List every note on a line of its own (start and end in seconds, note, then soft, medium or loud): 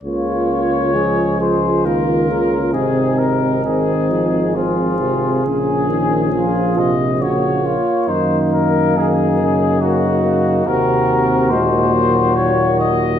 0.03 2.75 C#2 soft
0.03 0.97 C#3 soft
0.03 0.96 A#3 soft
0.03 0.96 F4 soft
0.03 1.37 C#5 medium
0.94 1.87 F3 soft
0.94 1.87 G#3 soft
0.94 1.40 G#4 soft
1.40 1.87 G#4 soft
1.40 1.86 C5 soft
1.84 2.32 D#3 soft
1.84 2.73 A#3 soft
1.84 2.73 F4 soft
1.84 2.72 A#4 medium
2.30 2.75 C#3 soft
2.72 5.45 G#1 soft
2.72 3.65 C3 soft
2.72 3.63 C4 soft
2.72 4.57 D#4 soft
2.72 3.17 G#4 soft
3.19 3.65 A#4 soft
3.64 4.12 D#3 soft
3.64 4.54 C4 soft
3.64 4.53 G#4 medium
4.10 4.55 F3 soft
4.55 5.02 F3 soft
4.55 5.47 C4 soft
4.55 5.46 F4 soft
4.55 6.17 G#4 soft
5.00 5.47 C3 soft
5.45 7.77 A#1 soft
5.45 5.91 C#3 soft
5.45 6.94 C#4 soft
5.45 6.75 G#4 medium
5.89 6.33 D#3 soft
6.33 6.79 F3 soft
6.33 6.93 F4 soft
6.77 7.22 C3 soft
6.77 7.22 D#5 medium
7.21 7.81 C#3 soft
7.21 9.77 A#3 soft
7.21 7.67 F#4 soft
7.21 8.08 C#5 soft
7.65 8.09 F4 soft
8.08 10.63 F#2 soft
8.08 8.92 D#3 soft
8.08 8.96 D#4 soft
8.08 8.39 C5 medium
8.52 8.95 A#4 medium
8.96 9.38 D#3 soft
8.96 9.81 D#4 soft
8.96 9.82 G#4 medium
9.40 10.64 C#3 soft
9.81 10.23 A#3 soft
9.81 10.69 D#4 soft
9.81 10.67 F#4 medium
10.24 10.66 A#3 soft
10.66 13.19 D#2 soft
10.66 11.52 C3 soft
10.66 11.53 C4 soft
10.66 13.08 F#4 soft
10.66 11.51 A#4 medium
11.50 13.19 A#2 medium
11.50 11.95 G#3 soft
11.50 12.36 C5 medium
11.94 13.19 F#3 soft
12.36 12.80 C#5 medium
12.80 13.19 D#5 medium